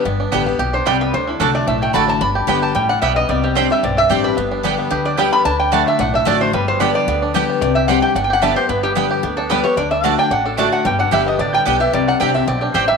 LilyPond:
<<
  \new Staff \with { instrumentName = "Resonator guitar played with a steel bar" } { \time 4/4 \key g \major \tempo 4 = 222 r2 r8 c''8 d''8 b'8 | c''8 e'8 a'8 d''8 e''8 g''8 b''8 a''8 | b''4. a''8 g''8 fis''8 e''8 ees''8 | d''8 g'8 c''8 e''8 d''8 e''8 d''8 b'8~ |
b'4 r4 b'8 d''8 g''8 b''8 | a''8 g''8 fis''8 e''8 fis''8 e''8 d''8 c''8 | b'8 c''8 d''8 d''4. r4 | d''8 e''8 fis''8 g''8 \tuplet 3/2 { fis''8 g''8 fis''8 } e''8 c''8 |
b'8 g'8 r4. a'8 b'8 cis''8 | d''8 e''8 fis''8 g''8 fis''8 a'8 d''8 fis''8 | g''8 fis''8 e''8 ees''8 d''8 g''8 r8 e''8 | d''8 fis''8 g''8 e''8 d''8 g'8 c''8 e''8 | }
  \new Staff \with { instrumentName = "Mandolin" } { \time 4/4 \key g \major r4 <b g' d'' g''>8 r4. <b g' d'' g''>8 r8 | r4 <a fis' d'' a''>8 r4. <a fis' d'' a''>8 r8 | r4 <b g' d'' g''>8 r4. <b g' d'' g''>8 r8 | r4 <c' g' d'' g''>8 r4. <c' g' d'' g''>8 r8 |
r4 <b g' d'' g''>8 r4. <b g' d'' g''>8 r8 | r4 <a fis' d'' a''>8 r4. <a fis' d'' a''>8 r8 | r4 <b g' d'' g''>8 r4. <b g' d'' g''>8 r8 | r4 <c' g' d'' g''>8 r4. <b g' d'' a''>8 r8 |
r4 <b g' d'' g''>8 r4. <b g' d'' g''>8 r8 | r4 <a fis' d'' a''>8 r4. <a fis' d'' a''>8 r8 | r4 <b g' d'' g''>8 r4. <b g' d'' g''>8 r8 | r4 <c' g' d'' g''>8 r4. <c' g' d'' g''>8 r8 | }
  \new Staff \with { instrumentName = "Five-string banjo" } { \time 4/4 \key g \major b8 d'8 g8 b8 g'8 d'8 g8 b8 | d'8 d'8 d'8 a8 d'8 a8 d'8 d'8 | d'8 g'8 d'8 g'8 g8 d'8 g8 d'8 | g8 c'8 d'8 g8 c'8 d'8 g'8 d'8 |
b8 d'8 g8 b8 g'8 d'8 g8 b8 | d'8 d'8 a8 d'8 d'8 d'8 a8 d'8 | g8 b8 d'8 g8 b8 d'8 g'8 d'8 | d'8 g'8 d'8 g'8 d'8 g'8 d'8 g'8 |
b8 g8 b8 g'8 b8 d'8 g8 b8 | d'8 d'8 d'8 d'8 d'8 d'8 a8 d8 | g8 d'8 g'8 b8 d'8 g8 d'8 g'8 | g8 d'8 c'8 d8 c'8 d'8 g'8 g8 | }
  \new Staff \with { instrumentName = "Steel-string acoustic guitar" } { \time 4/4 \key g \major << { r4 <d g b g'>8 <b g'>8 r2 | r4 <d a d' fis'>4 r4 <d a d' fis'>4 | r4 <d g b g'>4 r2 | r4 <g c' d' g'>8 <d' g'>8 r4 <g c' d' g'>4 |
r4 <d g b g'>4 r4 <d g b g'>4 | r4 <d a d' fis'>4 r4 <d a d' fis'>4 | r4 <d g b g'>4 r4 <d g b g'>4 | r4 <g c' d' g'>4 r4 <d g b g'>8 <b g'>8 |
r4 <d g b g'>4 r4 <d g b g'>8 <b g'>8 | r4 <d a d' fis'>4 r4 <d a d' fis'>4 | r4 <d g b g'>4 r4 <d g b g'>8 <b g'>8 | r4 <g c' d' g'>8 <d' g'>8 r2 | } \\ { g,2 b,4 c4 | d2 a,2 | g,2 a,4 b,4 | c2 g,2 |
g,2 d2 | d2 a,2 | g,2 d2 | c2 g,2 |
g,2 d2 | d2 a,2 | g,2 d2 | c2 b,4 a,4 | } >> }
  \new Staff \with { instrumentName = "Upright bass" } { \clef bass \time 4/4 \key g \major g,,4 a,,4 b,,4 c,4 | d,4 c,4 b,,4 a,,4 | g,,4 g,,4 a,,4 b,,4 | c,2 b,,4 a,,4 |
g,,2 d,2 | d,2 b,,4 a,,4 | g,,2 d,2 | c,2 g,,2 |
g,,2 d,2 | d,2 a,,2 | g,,4 g,,4 a,,4 b,,4 | c,4 c,4 b,,4 a,,4 | }
>>